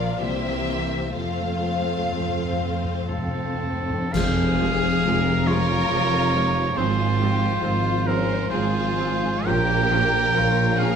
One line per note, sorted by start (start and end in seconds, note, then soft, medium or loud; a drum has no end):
0.00 0.20 A#1 medium
0.00 0.25 A#2 soft
0.00 0.19 F3 medium
0.00 0.20 F3 medium
0.00 0.50 A#3 soft
0.00 0.19 F4 soft
0.00 0.24 F4 soft
0.00 0.21 A#4 soft
0.00 0.19 D5 medium
0.00 0.25 D5 soft
0.00 0.21 F5 medium
0.00 0.24 F5 soft
0.19 1.13 C2 medium
0.19 1.19 C3 medium
0.19 1.15 E3 medium
0.19 1.16 A#3 medium
0.19 1.14 C4 soft
0.19 1.15 G4 medium
0.19 1.13 C5 medium
0.19 1.15 E5 medium
0.51 1.19 A#3 soft
0.83 1.78 C4 soft
0.83 2.11 C5 soft
1.15 1.22 F2 soft
1.15 3.91 F2 soft
1.15 3.57 F3 medium
1.15 4.12 F3 soft
1.15 3.87 A3 soft
1.15 3.87 C4 soft
1.15 3.05 F4 soft
1.15 3.05 C5 soft
1.15 3.58 F5 medium
1.23 1.30 F2 soft
1.31 1.38 F2 soft
1.39 1.46 F2 soft
1.47 1.54 F2 soft
1.47 4.18 A3 soft
1.55 1.63 F2 soft
1.64 1.71 F2 soft
1.80 5.70 C4 soft
1.88 1.95 F2 soft
1.97 2.03 F2 soft
2.04 2.11 F2 soft
2.12 2.19 F2 soft
2.12 2.75 C5 soft
2.20 2.27 F2 soft
2.28 2.35 F2 soft
2.37 2.43 F2 soft
2.44 2.51 F2 soft
2.44 3.79 A4 soft
2.52 2.59 F2 soft
2.60 2.67 F2 soft
2.68 2.75 F2 soft
2.76 2.83 F2 soft
2.76 3.42 C5 soft
2.84 2.91 F2 soft
2.93 3.00 F2 soft
3.01 3.08 F2 medium
3.09 3.17 F2 medium
3.09 4.10 C4 medium
3.09 4.14 A4 medium
3.09 5.46 C6 soft
3.18 3.26 F2 medium
3.27 3.34 F2 medium
3.36 3.42 F2 medium
3.43 3.53 F2 medium
3.43 4.80 C5 soft
3.54 3.62 F2 medium
3.63 3.71 F2 medium
3.72 3.80 F2 medium
3.80 3.89 F2 medium
3.80 4.18 A4 soft
3.90 3.98 F2 medium
3.99 4.07 F2 medium
4.13 4.94 F1 medium
4.13 4.94 F2 medium
4.13 7.17 F3 medium
4.13 4.22 F3 medium
4.13 4.22 G#3 medium
4.13 5.47 G#4 medium
4.13 5.49 F5 loud
4.13 concert bass drum medium
4.13 crash medium
4.38 6.96 G#3 soft
4.60 4.68 F3 medium
4.60 4.68 G#3 medium
4.60 7.39 F4 soft
4.81 6.53 C5 medium
5.03 5.80 F1 medium
5.03 5.80 F2 medium
5.03 5.12 F3 medium
5.03 5.12 G#3 medium
5.03 6.31 G#4 medium
5.03 6.71 A#4 medium
5.26 6.10 F5 medium
5.47 5.57 F3 medium
5.47 5.57 G#3 medium
5.47 6.73 F4 medium
5.47 6.78 C#5 loud
5.47 5.88 C6 medium
5.68 9.49 G#5 medium
5.90 6.65 F1 medium
5.90 6.65 F2 medium
5.90 5.99 F3 medium
5.90 5.99 G#3 medium
5.90 8.27 C6 medium
6.11 8.05 F5 medium
6.32 6.42 F3 medium
6.32 6.42 G#3 medium
6.32 9.49 G#4 medium
6.54 7.61 C5 soft
6.75 7.52 G#1 medium
6.75 7.52 G#2 medium
6.75 9.49 G#2 medium
6.75 6.85 F3 medium
6.75 6.85 C4 medium
6.75 8.03 F4 medium
6.75 7.20 G#4 medium
6.75 8.09 C5 medium
6.97 9.49 G#3 medium
7.18 9.90 F3 soft
7.18 7.29 F3 medium
7.18 7.29 C4 medium
7.18 7.62 G4 medium
7.40 7.83 F4 medium
7.62 8.40 G#1 medium
7.62 8.40 G#2 medium
7.62 7.71 F3 medium
7.62 7.71 C4 medium
7.62 8.07 F4 medium
7.62 8.97 C5 medium
7.84 8.72 F4 medium
8.06 8.17 F3 medium
8.06 8.16 C4 medium
8.06 8.51 C#4 medium
8.06 8.50 A#4 medium
8.06 8.50 C5 medium
8.06 8.50 F5 medium
8.29 9.49 C6 medium
8.50 9.34 G#1 medium
8.50 9.35 G#1 medium
8.50 9.35 G#2 medium
8.50 8.61 F3 medium
8.50 8.61 C4 medium
8.50 9.46 F4 medium
8.50 9.43 G#4 medium
8.50 9.48 C5 medium
8.50 10.78 F5 medium
8.74 9.22 F4 medium
8.98 9.07 F3 medium
8.98 9.07 C4 medium
8.98 9.50 C5 medium
9.23 10.12 F4 medium
9.45 10.25 A#1 medium
9.45 10.24 A#2 medium
9.45 10.96 A#2 medium
9.45 9.54 F3 medium
9.45 9.54 C#4 medium
9.45 10.35 G4 medium
9.45 10.76 A#4 medium
9.45 10.80 G5 loud
9.70 10.96 A#3 soft
9.91 9.99 F3 medium
9.91 10.96 F3 medium
9.91 9.99 C#4 medium
10.13 10.56 F4 medium
10.34 10.96 A#1 medium
10.34 10.96 A#2 medium
10.34 10.43 F3 medium
10.34 10.44 C#4 medium
10.34 10.79 F4 medium
10.34 10.96 C#5 medium
10.57 10.96 F4 medium
10.78 10.88 F3 medium
10.78 10.88 C#4 medium
10.78 10.96 G#4 medium
10.78 10.96 A#4 medium
10.78 10.96 F5 medium